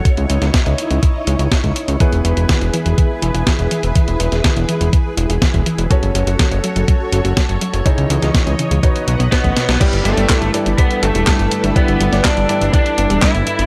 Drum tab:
CC |----------------|----------------|----------------|----------------|
HH |xxxxxxxxx-xxxxxx|xxxxxxxxx-xxxxxx|xxxxxxxxx-xxxxxx|xxxxxxxxx-xxxxxx|
CP |----------------|----------------|----------------|----------------|
SD |---oo-------o---|----o-------o---|---oo-------o---|----o-------o---|
BD |o---o---o---oo--|o---o---o---o---|o---o---o---oo--|o---o---o---o---|

CC |----------------|x---------------|----------------|
HH |xxxxxxxxxxxxxxxx|xxxxxxxxxxxxxxxx|xxxxxxxxxxxxxxxx|
CP |----------------|----x-------x---|----x-------x---|
SD |---oo-------o-oo|----o-------o---|---oo-------o---|
BD |o---o---o---oo--|o---o---o---o---|o---o---o---o---|